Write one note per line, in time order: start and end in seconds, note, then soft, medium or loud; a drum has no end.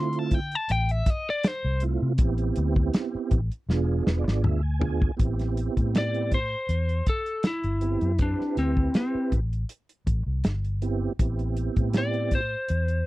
0.00 0.55 D3 medium
0.00 0.40 A3 medium
0.00 0.40 C4 medium
0.00 0.40 E4 medium
0.00 0.40 F4 loud
0.00 0.19 C6 loud
0.13 closed hi-hat soft
0.19 0.34 A5 medium
0.31 0.55 G5 medium
0.31 kick medium
0.31 closed hi-hat medium
0.52 0.71 A5 loud
0.52 closed hi-hat soft
0.69 1.01 A1 loud
0.69 0.91 G5 loud
0.69 closed hi-hat medium
0.89 1.10 E5 medium
0.89 closed hi-hat soft
1.06 kick medium
1.06 snare soft
1.06 closed hi-hat medium
1.10 1.28 D#5 medium
1.30 1.48 D5 medium
1.43 snare loud
1.43 closed hi-hat medium
1.48 1.82 C5 loud
1.65 1.96 C2 medium
1.80 2.13 A3 medium
1.80 2.12 C4 medium
1.80 2.13 E4 medium
1.80 2.13 F4 medium
1.80 closed hi-hat medium
2.02 2.17 C3 loud
2.18 2.50 A1 loud
2.18 3.40 B3 medium
2.18 3.40 C4 medium
2.18 3.41 E4 medium
2.18 3.41 G4 medium
2.18 kick loud
2.18 closed hi-hat medium
2.38 closed hi-hat soft
2.56 2.88 D2 loud
2.56 closed hi-hat medium
2.76 kick medium
2.94 snare loud
2.94 closed hi-hat medium
3.15 muted fingered electric bass stroke soft
3.31 3.48 A1 loud
3.31 kick medium
3.31 closed hi-hat medium
3.52 closed hi-hat soft
3.69 4.00 E1 loud
3.69 4.61 B3 medium
3.69 4.61 D4 medium
3.69 4.61 F4 medium
3.69 4.61 G#4 loud
3.69 snare medium
4.07 4.23 E1 loud
4.07 4.18 B4 medium
4.07 snare medium
4.19 4.42 D5 medium
4.28 4.42 G#1 medium
4.28 snare medium
4.44 5.08 D2 medium
4.44 4.62 E5 medium
4.44 mid tom medium
4.63 5.15 G#5 medium
4.79 5.11 B3 medium
4.79 5.11 D4 medium
4.79 5.12 F4 medium
4.79 5.12 G#4 loud
4.79 floor tom loud
5.02 kick medium
5.17 5.68 A1 medium
5.17 6.39 B3 medium
5.17 6.39 C4 medium
5.17 6.39 E4 medium
5.17 6.39 G4 medium
5.17 kick loud
5.17 closed hi-hat medium
5.39 snare soft
5.39 closed hi-hat soft
5.57 closed hi-hat medium
5.77 6.54 A2 medium
5.77 kick medium
5.77 closed hi-hat soft
5.95 6.33 D5 loud
5.95 snare loud
5.95 closed hi-hat medium
6.14 closed hi-hat soft
6.31 7.06 C5 medium
6.31 kick medium
6.31 closed hi-hat medium
6.69 7.00 E2 loud
6.69 closed hi-hat medium
6.89 closed hi-hat soft
7.06 7.44 A4 medium
7.06 kick medium
7.06 closed hi-hat medium
7.26 closed hi-hat soft
7.43 snare loud
7.43 closed hi-hat medium
7.47 8.18 E4 medium
7.63 7.96 G1 medium
7.63 closed hi-hat soft
7.81 8.12 B3 medium
7.81 8.12 C4 medium
7.81 8.12 E4 medium
7.81 8.13 G4 medium
7.81 closed hi-hat medium
8.01 8.33 F#2 medium
8.01 closed hi-hat soft
8.18 9.40 C4 medium
8.18 8.57 D4 medium
8.18 9.40 E4 medium
8.18 9.40 G4 medium
8.18 9.40 B4 medium
8.18 kick loud
8.18 closed hi-hat medium
8.41 snare soft
8.57 8.88 D2 medium
8.57 8.94 C4 medium
8.57 snare soft
8.57 closed hi-hat medium
8.77 kick medium
8.94 9.32 C4 medium
8.94 snare loud
8.94 closed hi-hat medium
9.15 muted fingered electric bass stroke soft
9.32 9.63 A1 medium
9.32 kick medium
9.32 closed hi-hat medium
9.53 closed hi-hat soft
9.69 closed hi-hat medium
9.89 closed hi-hat soft
10.07 10.23 A1 medium
10.07 kick medium
10.07 closed hi-hat medium
10.26 10.41 C2 medium
10.44 11.07 G1 medium
10.44 snare loud
10.44 closed hi-hat medium
10.65 closed hi-hat soft
10.82 11.12 B3 medium
10.82 11.13 C4 medium
10.82 11.13 E4 medium
10.82 11.13 G4 loud
10.82 closed hi-hat medium
11.19 11.68 A1 loud
11.19 12.40 B3 medium
11.19 12.41 C4 medium
11.19 12.41 E4 medium
11.19 12.41 G4 medium
11.19 kick loud
11.19 closed hi-hat medium
11.39 closed hi-hat soft
11.57 closed hi-hat medium
11.76 12.55 A2 medium
11.76 kick medium
11.76 closed hi-hat soft
11.93 snare loud
11.93 closed hi-hat medium
11.98 12.33 D5 loud
12.14 closed hi-hat soft
12.31 13.06 C5 medium
12.31 kick medium
12.31 closed hi-hat medium
12.68 13.01 E2 loud
12.68 closed hi-hat medium
12.88 closed hi-hat soft